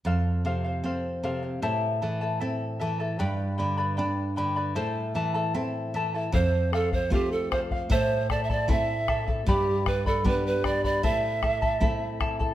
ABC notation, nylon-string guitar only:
X:1
M:2/4
L:1/8
Q:1/4=76
K:Am
V:1 name="Nylon-string guitar" clef=bass
F,, C, C C, | A,, E, C E, | G,, D, D D, | A,, E, C E, |
F,,2 [A,CF]2 | A,,2 [A,CE]2 | G,,2 [G,B,D]2 | A,,2 [A,CE]2 |]